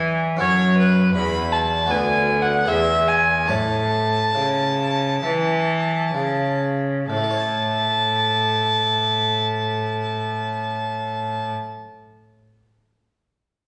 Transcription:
0.00 0.37 E3 medium
0.00 0.39 E3 medium
0.00 0.35 D4 medium
0.00 0.35 E4 medium
0.00 0.36 B4 medium
0.00 0.23 G#5 loud
0.37 1.10 C#4 medium
0.37 1.85 F#4 medium
0.37 1.85 A4 medium
0.41 1.13 F#2 medium
0.41 1.11 F#2 medium
0.41 0.75 C#5 loud
0.78 1.14 B4 medium
1.14 1.88 E2 medium
1.14 1.86 E2 medium
1.14 1.54 B5 loud
1.52 1.92 A5 medium
1.86 2.67 D2 medium
1.86 2.63 B3 medium
1.86 2.65 F#4 medium
1.86 2.65 B4 medium
1.90 2.64 D2 medium
1.90 2.43 G#5 medium
2.42 2.69 F#5 medium
2.64 3.51 E2 medium
2.64 3.45 B3 medium
2.64 3.46 G#4 medium
2.64 3.47 B4 medium
2.64 3.09 E5 medium
2.68 3.46 E2 medium
3.08 3.49 G#5 medium
3.46 7.03 A3 soft
3.46 7.04 A4 soft
3.46 7.05 C#5 soft
3.46 6.57 A5 loud
3.50 4.34 A2 medium
3.50 4.31 A2 medium
4.35 5.21 C#3 medium
4.35 5.19 C#3 medium
5.23 6.13 E3 medium
5.23 6.11 E3 medium
6.14 7.07 C#3 medium
6.14 7.06 C#3 medium
7.09 11.50 A2 medium
7.09 11.51 A2 medium
7.09 11.50 A5 medium
7.17 11.58 A3 medium
7.24 11.65 A4 medium
7.31 11.71 C#5 medium
7.38 11.79 A5 medium

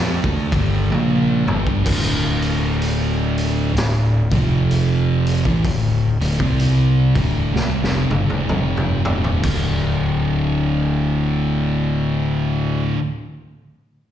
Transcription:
0.00 0.22 F2 medium
0.00 0.22 F3 medium
0.00 0.23 C4 loud
0.24 0.50 D2 medium
0.24 0.50 D3 medium
0.24 0.51 A3 medium
0.24 kick loud
0.52 0.88 G1 medium
0.52 0.89 G2 medium
0.52 0.90 D3 medium
0.52 0.90 G3 loud
0.52 kick loud
0.52 ride medium
0.90 1.43 A#1 loud
0.90 1.45 A#2 medium
0.90 1.45 F3 medium
0.90 1.46 A#3 loud
0.90 high tom medium
1.46 1.83 G1 medium
1.46 1.84 G2 medium
1.46 1.84 D3 medium
1.46 1.84 G3 loud
1.46 mid tom medium
1.67 kick medium
1.85 3.71 D1 medium
1.85 3.73 D2 loud
1.85 3.74 A2 loud
1.85 3.74 D3 loud
1.85 kick loud
1.85 crash loud
2.42 open hi-hat medium
2.82 open hi-hat medium
3.38 open hi-hat medium
3.74 4.27 D1 medium
3.74 4.20 D2 medium
3.74 4.20 A2 medium
3.74 snare loud
3.74 open hi-hat medium
4.30 5.41 F1 medium
4.30 5.44 F2 loud
4.30 5.44 C3 loud
4.30 5.44 F3 loud
4.30 kick loud
4.30 open hi-hat soft
4.71 open hi-hat medium
5.27 open hi-hat medium
5.45 5.63 A1 medium
5.45 5.63 A2 medium
5.45 5.64 E3 medium
5.45 kick medium
5.64 6.17 D1 medium
5.64 6.09 D2 medium
5.64 6.09 A2 medium
5.64 kick loud
5.64 open hi-hat medium
6.20 6.39 D1 loud
6.20 6.39 D2 medium
6.20 6.39 A2 medium
6.20 open hi-hat medium
6.39 7.11 C2 medium
6.39 7.13 C3 medium
6.39 7.14 G3 medium
6.39 7.14 C4 loud
6.39 kick loud
6.60 open hi-hat medium
7.15 7.52 D1 medium
7.15 7.53 D2 loud
7.15 7.53 A2 medium
7.15 7.53 D3 loud
7.15 kick loud
7.15 open hi-hat soft
7.54 7.80 C2 medium
7.54 7.80 C3 medium
7.54 7.81 G3 loud
7.54 snare medium
7.82 8.08 F1 medium
7.82 8.08 F2 medium
7.82 8.09 C3 loud
7.82 snare medium
8.09 8.28 G1 medium
8.09 8.28 G2 loud
8.09 8.28 D3 loud
8.09 high tom medium
8.29 8.48 D1 medium
8.29 8.47 D2 medium
8.29 8.48 A2 medium
8.29 high tom medium
8.48 9.01 F1 medium
8.48 9.03 F2 medium
8.48 9.03 C3 medium
8.48 9.04 F3 medium
8.48 mid tom medium
8.77 mid tom medium
9.05 9.41 D1 medium
9.05 9.42 D2 medium
9.05 9.43 A2 medium
9.05 9.43 D3 loud
9.05 floor tom loud
9.24 floor tom medium
9.43 12.80 D1 medium
9.43 12.93 D2 medium
9.43 12.95 A2 loud
9.43 12.96 D3 medium
9.43 kick loud
9.43 crash medium

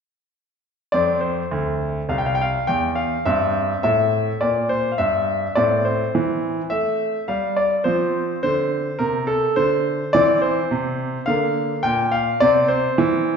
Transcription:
0.92 1.40 F2 medium
0.92 3.21 C4 soft
0.92 1.19 D5 medium
1.21 2.09 C5 medium
1.51 1.98 D2 medium
2.09 2.56 C2 medium
2.09 2.18 F5 medium
2.18 2.26 G5 medium
2.26 2.34 F5 medium
2.35 2.43 G5 medium
2.41 2.67 F5 medium
2.67 3.14 E2 medium
2.67 2.85 G5 medium
2.95 3.25 F5 medium
3.25 3.72 G2 medium
3.25 5.53 C4 soft
3.25 3.82 E5 medium
3.83 4.30 A2 medium
3.83 4.41 E5 medium
4.41 4.87 A#2 soft
4.41 4.70 D5 medium
4.69 4.91 C5 medium
4.92 4.99 F5 soft
4.98 5.45 G2 medium
4.98 5.56 E5 medium
5.55 6.03 A2 medium
5.55 7.81 C4 soft
5.55 5.85 D5 medium
5.85 6.67 C5 medium
6.15 6.60 E3 medium
6.70 7.17 A3 medium
6.70 7.23 E5 medium
7.28 7.74 G3 medium
7.28 7.57 F5 medium
7.57 7.82 D5 medium
7.84 8.31 F3 medium
7.84 10.10 C4 soft
7.84 8.38 C5 medium
8.43 8.89 D3 medium
8.43 9.00 C5 medium
8.99 9.46 C3 medium
8.99 9.25 A#4 medium
9.27 9.53 A4 medium
9.56 10.03 D3 medium
9.56 10.14 C5 medium
10.13 10.60 E3 medium
10.13 11.24 C4 soft
10.13 10.39 D5 loud
10.42 11.23 C5 medium
10.71 11.16 C3 medium
11.26 11.73 D3 medium
11.26 12.37 A#3 soft
11.26 11.84 F5 medium
11.83 12.30 A#2 medium
11.83 12.12 G5 medium
12.12 12.38 F5 medium
12.40 12.87 C3 medium
12.40 13.37 C4 soft
12.40 12.69 D5 loud
12.68 13.37 C5 medium
12.98 13.37 E3 medium

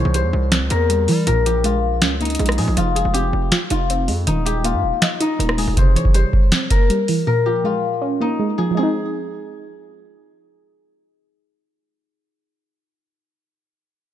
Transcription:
0.00 0.71 C3 loud
0.00 0.89 E3 medium
0.00 1.91 D#4 medium
0.00 1.17 F4 medium
0.00 1.52 G#4 medium
0.00 0.20 C#5 medium
0.05 0.25 C2 loud
0.14 0.88 G3 medium
0.14 2.12 C5 medium
0.14 closed hi-hat medium
0.24 0.33 E2 loud
0.33 0.63 C2 loud
0.52 1.27 C4 medium
0.52 finger snap loud
0.52 snare loud
0.52 closed hi-hat medium
0.61 0.70 C#2 loud
0.70 1.10 E2 loud
0.70 1.27 A#3 medium
0.70 1.26 A#4 medium
0.70 closed hi-hat medium
0.90 1.27 G3 medium
0.90 closed hi-hat medium
1.08 1.27 E3 medium
1.08 1.26 G3 loud
1.08 open hi-hat medium
1.27 2.03 A#1 loud
1.27 2.21 A#2 loud
1.27 3.39 A#4 medium
1.27 closed hi-hat medium
1.46 2.40 F3 medium
1.46 2.64 G4 medium
1.46 closed hi-hat medium
1.64 2.38 G#3 medium
1.64 2.77 F4 medium
1.64 closed hi-hat medium
2.02 2.38 C#2 loud
2.02 2.77 C#4 medium
2.02 finger snap loud
2.02 snare loud
2.02 closed hi-hat medium
2.21 2.77 A#3 medium
2.21 4.27 D#4 medium
2.21 closed hi-hat soft
2.25 closed hi-hat medium
2.30 closed hi-hat medium
2.35 closed hi-hat medium
2.39 2.60 A#1 loud
2.39 2.77 G#3 loud
2.39 closed hi-hat medium
2.46 cross-stick loud
2.46 closed hi-hat medium
2.52 closed hi-hat medium
2.58 2.67 A#2 loud
2.58 2.75 F3 medium
2.58 2.95 G#4 medium
2.58 open hi-hat medium
2.68 2.76 A#1 loud
2.77 3.04 F1 loud
2.77 3.71 F3 medium
2.77 3.71 F4 medium
2.77 closed hi-hat medium
2.96 3.89 G#3 medium
2.96 3.20 G#4 medium
2.96 closed hi-hat medium
3.05 3.32 F1 loud
3.14 3.89 C4 medium
3.14 4.45 G4 medium
3.14 closed hi-hat medium
3.33 3.51 F1 loud
3.52 4.27 F4 medium
3.52 finger snap medium
3.52 snare loud
3.52 closed hi-hat medium
3.70 4.10 F1 loud
3.70 4.27 D#4 medium
3.70 4.64 F4 medium
3.70 closed hi-hat medium
3.90 4.27 C4 medium
3.90 closed hi-hat medium
4.08 4.26 F2 loud
4.08 4.27 G#3 medium
4.08 open hi-hat medium
4.27 4.75 D#1 loud
4.27 5.21 D#3 loud
4.27 5.21 D#4 medium
4.27 closed hi-hat medium
4.46 5.40 G#3 medium
4.46 5.64 G4 medium
4.46 closed hi-hat medium
4.64 5.38 A#3 medium
4.64 7.17 F4 medium
4.64 closed hi-hat medium
4.74 4.85 G2 loud
4.83 4.92 D#1 loud
5.02 5.77 D#5 medium
5.02 finger snap loud
5.02 snare loud
5.02 closed hi-hat medium
5.20 5.77 D#4 medium
5.20 7.91 D#4 medium
5.20 closed hi-hat medium
5.39 5.66 D#1 loud
5.39 5.77 A#3 medium
5.39 closed hi-hat medium
5.49 cross-stick loud
5.58 5.77 G#3 medium
5.58 7.52 G#4 medium
5.58 open hi-hat medium
5.68 5.77 D#1 loud
5.77 6.71 C3 medium
5.77 6.02 C5 medium
5.77 kick loud
5.77 closed hi-hat medium
5.95 6.89 E3 medium
5.95 6.20 C#5 medium
5.95 closed hi-hat medium
6.05 kick loud
6.14 6.88 G3 medium
6.14 8.12 C5 medium
6.14 closed hi-hat medium
6.33 kick medium
6.52 7.27 C4 medium
6.52 finger snap loud
6.52 snare loud
6.52 closed hi-hat medium
6.70 7.27 A#3 medium
6.70 7.27 A#4 medium
6.70 kick medium
6.70 closed hi-hat medium
6.90 7.27 G3 medium
6.90 closed hi-hat medium
7.08 7.27 E3 medium
7.08 open hi-hat medium
7.27 8.21 A#2 loud
7.27 9.39 A#4 medium
7.46 8.40 F3 medium
7.46 8.64 G4 medium
7.64 8.38 G#3 medium
7.64 10.17 F4 medium
8.02 8.77 C#4 medium
8.21 8.77 A#3 medium
8.21 10.92 D#4 medium
8.39 8.74 G#3 loud
8.58 8.70 F3 medium
8.58 8.77 G#4 medium
8.71 13.20 F3 medium
8.71 13.22 G#3 medium
8.77 13.24 C4 medium
8.77 11.04 G#4 medium
8.83 13.26 D#4 loud

